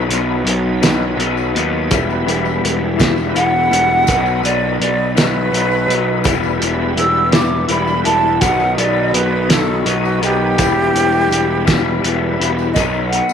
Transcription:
Already playing: B2 D#3 F#3 B3 D#4 B4
0.07 B1 F#3 B3 D#4
0.11 closed hi-hat, tambourine
0.44 B1, closed hi-hat
0.81 B2 D#3 F#3 B3 D#4, snare, closed hi-hat, tambourine
1.16 B1 D#3 F#3 B3 D#4, closed hi-hat, tambourine
1.37 tambourine
1.54 D#2 F#3 B3 D#4, closed hi-hat
1.90 E1 E3 G3 B3 E4, kick, closed hi-hat, tambourine
1.94 G3 E4
2.10 tambourine
2.26 E1 G3 B3 E4, closed hi-hat, tambourine
2.45 tambourine
2.63 E1, closed hi-hat
2.97 E3 G3 B3 E4, kick, closed hi-hat, tambourine
3.01 snare
3.17 tambourine
3.33 E1 E3 G3 B3 E4 F#5, closed hi-hat
3.70 E1 G3 B3 E4, closed hi-hat, tambourine
4.07 B1 B2 D#3 F#3 B3 D#4, kick, closed hi-hat, tambourine
4.26 tambourine
4.43 B1 F#3 B3 D#4 D5, closed hi-hat, tambourine
4.80 B1 D5, closed hi-hat
5.15 B2 D#3 F#3 B3 D#4 B4, snare, closed hi-hat, tambourine
5.52 B1 D#3 F#3 B3 D#4, closed hi-hat, tambourine
5.71 tambourine
5.88 B1 F#3 B3 D#4, closed hi-hat
6.23 E1 E3 G3 B3 E4 B4, kick, closed hi-hat, tambourine
6.43 tambourine
6.60 E1 G3 B3 E4, closed hi-hat, tambourine
6.96 E1 E6, closed hi-hat
7.32 E3 G3 B3 E4 D6, snare, closed hi-hat, tambourine
7.68 E1 E3 G3 B3 E4 B5, closed hi-hat, tambourine
7.87 tambourine
8.04 E1 G3 B3 E4 A5, closed hi-hat
8.41 B1 B2 D#3 F#3 B3 D#4 B4 F#5, kick, closed hi-hat, tambourine
8.60 tambourine
8.77 B1 F#3 B3 D#4 D5, closed hi-hat, tambourine
9.14 B1 B4, closed hi-hat
9.48 B2 D#3 F#3 B3 D#4 A4, snare, closed hi-hat, tambourine
9.84 B1 D#3 F#3 B3 D#4 F#4, closed hi-hat, tambourine
10.05 tambourine
10.20 B1 F#3 B3 D#4 G4, closed hi-hat
10.58 E1 E3 G3 B3 E4, kick, closed hi-hat, tambourine
10.93 E1 G3 B3 E4, closed hi-hat, tambourine
11.12 tambourine
11.30 E1, closed hi-hat, tambourine
11.65 E3 G3 B3 E4, kick, snare, closed hi-hat, tambourine
12.02 E1 E3 G3 B3 E4, closed hi-hat
12.38 E1 G3 B3 E4, closed hi-hat
12.59 tambourine
12.73 B1 B2 D#3 F#3 B3 D#4 B4 D#5, kick, closed hi-hat, tambourine
12.94 tambourine
13.09 F#3 B3 D#4 F#5, closed hi-hat
13.29 tambourine

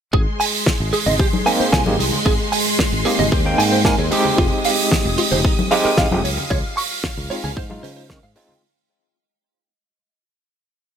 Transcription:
0.13 G#1 G#3 G#4 C6, kick
0.40 G#5, open hi-hat
0.66 kick, snare
0.80 G#1
0.93 G#4, open hi-hat
1.06 G#1 D#5, low conga
1.19 G4, kick
1.33 high conga
1.46 A#3 C4 D#4 G#5, open hi-hat
1.60 C5, muted fingered electric bass stroke
1.72 C2 G#5, kick, snare
1.86 G#1 A#3 C4 D#4 G4 G#4, high conga
1.99 C2 G#4, open hi-hat
2.12 low conga
2.26 G#1 G#4, kick
2.52 G#5, open hi-hat
2.79 kick, snare
2.92 G#1
3.05 A#3 C4 D#4 G4 G#4, open hi-hat
3.19 G#1 D#5, low conga
3.32 D#2 G4, kick
3.45 A#3 C4 D#4 G5
3.58 G#2 G#5, open hi-hat
3.72 C5
3.85 A#3 C4 D#4 A#4 G#5, kick, snare
3.98 D#2 G#4
4.11 G#3 C4 D#4 G4 G#4, open hi-hat
4.25 low conga
4.38 F1 F4 D#6, kick
4.64 F5, open hi-hat
4.91 kick, snare
5.05 F1
5.18 F4, open hi-hat
5.32 F1 C5, low conga
5.45 D#4, kick
5.59 high conga
5.71 G#3 C4 D#4 G4 F5, open hi-hat
5.85 A#4, muted fingered electric bass stroke
5.97 G#1 F5, kick, snare
6.11 F1 G#3 C4 D#4 F4 G4, high conga
6.24 C#2 C#5 F5, open hi-hat
6.37 low conga
6.50 C#2 C#5, kick
6.77 C#6, open hi-hat
7.04 kick, snare
7.17 C#2
7.30 G#3 C4 D#4 F4 C#5, open hi-hat
7.44 C#2 G#5, low conga
7.57 G#2 C5, kick
7.70 G#3 D#4 F4, high conga
7.83 C#3 C5, open hi-hat
7.96 C5
8.09 G#3 C4 D#4 A#4 C#6, kick, snare
8.23 G#2 F5
8.35 G#3 C4 D#4 F4 C#5, open hi-hat
8.49 G5, low conga

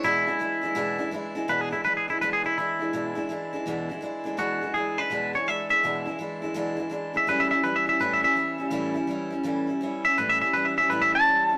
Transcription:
0.03 E2 B2 E3 G#3 D4 E4
0.26 E3 G#3 D4 E4
0.39 E3 G#3 D4 E4
0.62 E3 G#3 D4 E4
0.75 E2 B2 E3 G#3 D4 E4
0.98 E3 G#3 D4 E4
1.11 E3 G#3 D4 E4
1.35 E3 G#3 D4 E4
1.48 E2 B2 E3 G#3 D4 E4 B4
1.61 G#4
1.71 E3 G#3 D4 E4
1.84 E3 G#3 D4 E4 B4
1.97 G#4
2.08 E3 G#3 D4 E4
2.21 E2 B2 E3 G#3 D4 E4 B4
2.33 G#4
2.43 E3 G#3 D4 E4
2.57 E3 G#3 D4 E4
2.79 E3 G#3 D4 E4
2.93 E2 B2 E3 G#3 D4 E4
3.15 E3 G#3 D4 E4
3.29 E3 G#3 D4 E4
3.53 E3 G#3 D4 E4
3.66 E2 B2 E3 G#3 D4 E4
3.89 E3 G#3 D4 E4
4.01 E3 G#3 D4 E4
4.24 E3 G#3 D4 E4
4.37 E2 B2 E3 G#3 D4 E4 F#4
4.61 E3 G#3 D4 E4
4.74 E3 G#3 D4 E4 G#4
4.98 E3 G#3 D4 E4 B4
5.10 E2 B2 E3 G#3 D4 E4
5.33 E3 G#3 D4 E4 C#5
5.47 E3 G#3 D4 E4 E5
5.69 E3 G#3 D4 E4 E5
5.83 E2 B2 E3 G#3 D4 E4
6.05 E3 G#3 D4 E4
6.19 E3 G#3 D4 E4
6.42 E3 G#3 D4 E4
6.54 E2 B2 E3 G#3 D4 E4
6.77 E3 G#3 D4 E4
6.90 E3 G#3 D4 E4
7.13 E3 G#3 D4 E4 E5
7.27 A2 E3 G3 C#4 E4 B4
7.40 E5
7.50 G3 C#4 E4 E5
7.63 E3 G3 C#4 E4 B4
7.76 E5
7.86 G3 C#4 E4 E5
8.00 A2 E3 G3 C#4 E4 B4
8.13 E5
8.23 G3 C#4 E4 E5
8.35 E3 G3 C#4
8.58 G3 C#4 E4
8.70 A2 E3 G3 C#4 E4
8.94 G3 C#4 E4
9.07 E3 G3 C#4 E4
9.30 G3 C#4 E4
9.43 A2 E3 G3 C#4 E4
9.67 G3 C#4 E4
9.81 E3 G3 C#4 E4
10.04 G3 C#4 E4 E5
10.18 A2 E3 G3 C#4 E4 B4
10.29 E5
10.41 G3 C#4 E4 E5
10.53 E3 G3 C#4 E4 B4
10.65 E5
10.77 G3 C#4 E4 E5
10.90 A2 E3 G3 C#4 E4 B4
11.02 E5
11.13 G3 C#4 E4 A5
11.26 E3 G3 C#4 E4
11.49 G3 C#4 E4

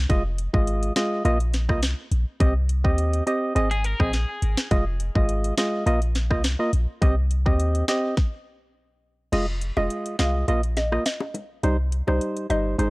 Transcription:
0.09 F1 G#3 F4 D#5, kick, closed hi-hat
0.38 closed hi-hat
0.53 G#1 G#3 F4 D#5, kick
0.67 closed hi-hat
0.83 closed hi-hat
0.96 G#3 F4 D#5, snare, closed hi-hat
1.25 A#1 A#3 F4 D#5, closed hi-hat
1.40 closed hi-hat
1.54 snare, closed hi-hat
1.69 C2 A#3 F4 D#5, kick, cross-stick
1.82 snare, closed hi-hat
2.12 A#1, closed hi-hat
2.40 C2 C4 G4 D#5, kick, closed hi-hat
2.69 closed hi-hat
2.84 D#2 C4 G4 D#5, kick
2.98 closed hi-hat
3.13 closed hi-hat
3.27 C4 G4 D#5, closed hi-hat
3.55 G#1 C4 G#4 D#5, closed hi-hat
3.71 G#4, closed hi-hat
3.84 A#4, closed hi-hat
4.00 A#1 C4 G#4 D#5, kick, cross-stick
4.13 snare, closed hi-hat
4.42 G#1, closed hi-hat
4.57 snare
4.71 F1 G#3 F4 D#5, kick, closed hi-hat
5.00 closed hi-hat
5.15 G#1 G#3 F4 D#5, kick
5.29 closed hi-hat
5.44 closed hi-hat
5.58 G#3 F4 D#5, snare, closed hi-hat
5.86 A#1 A#3 F4 D#5, closed hi-hat
6.02 closed hi-hat
6.15 snare, closed hi-hat
6.30 C2 A#3 F4 D#5, kick, cross-stick
6.44 snare, closed hi-hat
6.59 A#3 F4 D#5
6.73 A#1, closed hi-hat
7.02 C2 C4 G4 D#5, kick, closed hi-hat
7.31 closed hi-hat
7.46 D#2 C4 G4 D#5, kick
7.60 closed hi-hat
7.75 closed hi-hat
7.88 C4 G4 D#5, snare, closed hi-hat
8.17 kick, snare
9.32 F1 G#3 F4 D#5, closed hi-hat, crash, high bongo
9.61 closed hi-hat
9.77 F1 G#3 F4 D#5, high bongo
9.90 closed hi-hat
10.06 closed hi-hat
10.19 C2 G#3 F4 D#5 F5, snare, closed hi-hat
10.48 A#1 A#3 F4 D#5, closed hi-hat, high bongo
10.63 closed hi-hat
10.77 D#5, snare, closed hi-hat, high bongo
10.92 A#3 F4 D#5, cross-stick
11.06 D#5, snare, closed hi-hat
11.20 high bongo
11.34 closed hi-hat, low bongo
11.63 C2 G3 D#4 C5, closed hi-hat, high bongo
11.92 closed hi-hat
12.07 C2 G3 D#4 C5, high bongo
12.21 closed hi-hat
12.37 closed hi-hat
12.50 G1 G3 D#4 C5 D#5, closed hi-hat
12.78 G#1 G#3 D#4 C5, closed hi-hat, high bongo

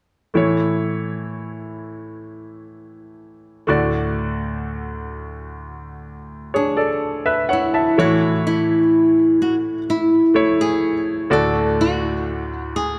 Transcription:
0.34 A2 E3 A3 E4 C#5
3.67 D2 A2 A3 F#4 D5
6.54 D4 G#4 C#5
6.77 A4 D5
7.26 B4 E5
7.49 C#5 F#5
7.53 E4
7.74 E5 A5
7.97 A2 E3 A3 E4 F#4 C#5
8.47 E4
9.42 F#4
9.90 E4
10.34 A3 E4 C#5
10.61 G#4
11.30 D2 A2 A3 F#4 A4 D5
11.81 F#4
12.76 G#4

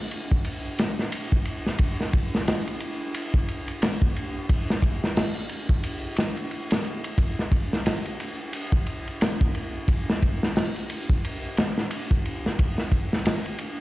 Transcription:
0.11 ride
0.31 kick
0.45 ride
0.79 snare, ride
0.99 snare
1.12 ride
1.32 kick
1.45 ride
1.67 snare
1.78 kick, ride
2.00 snare
2.13 kick, ride
2.35 snare
2.48 snare, ride
2.67 ride
2.80 ride
3.14 ride
3.34 kick
3.48 ride
3.68 ride
3.82 snare, ride
4.02 kick
4.16 ride
4.49 kick, ride
4.70 snare
4.82 kick, ride
5.04 snare
5.17 snare, open hi-hat
5.36 ride
5.49 ride
5.69 kick
5.83 ride
6.16 snare, ride
6.37 ride
6.51 ride
6.71 snare, ride
6.84 ride
7.04 ride
7.18 kick, ride
7.39 snare
7.52 kick, ride
7.73 snare
7.86 snare, ride
8.06 ride
8.20 ride
8.53 ride
8.72 kick
8.87 ride
9.07 ride
9.21 snare, ride
9.41 kick
9.55 ride
9.88 kick, ride
10.10 snare
10.22 kick, ride
10.43 snare
10.56 snare, open hi-hat
10.76 ride
10.90 ride
11.10 kick
11.25 ride
11.57 snare, ride
11.78 snare
11.91 ride
12.11 kick
12.25 ride
12.46 snare
12.59 kick, ride
12.78 snare
12.92 kick, ride
13.13 snare
13.25 snare, ride
13.46 ride
13.58 ride

